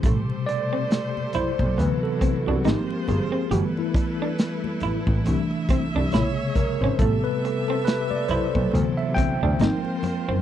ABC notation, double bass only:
X:1
M:4/4
L:1/16
Q:"Swing 16ths" 1/4=69
K:Ador
V:1 name="Double bass" clef=bass
A,,,6 B,,, B,,, D,,2 C,, C,, ^G,,,2 =G,,,2 | G,,,6 A,,, A,,, C,,2 C,, C,, _B,,,2 z _A,,, | A,,,6 B,,, B,,, D,,2 D,, D,, ^G,,,2 z F,,, |]